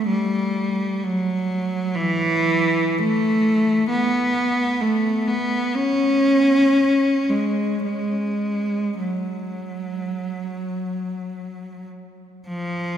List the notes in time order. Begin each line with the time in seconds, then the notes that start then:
0.08 G3
1.04 F#3
1.95 E3
2.99 A3
3.89 B3
4.81 A3
5.28 B3
5.75 C#4
7.29 G#3
7.85 G#3
9.02 F#3
12.48 F3